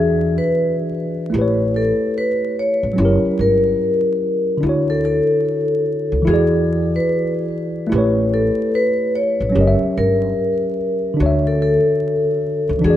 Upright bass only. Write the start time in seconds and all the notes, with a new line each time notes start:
Already playing: E2
1.34 A1
2.83 A1
2.98 F#1
3.25 muted upright bass stroke
3.39 G1
4.63 D2
6.12 C#2
6.27 E2
7.92 A1
9.40 A1
9.55 F#1
9.83 muted upright bass stroke
9.97 G1
11.20 D2
12.69 C#2
12.84 E2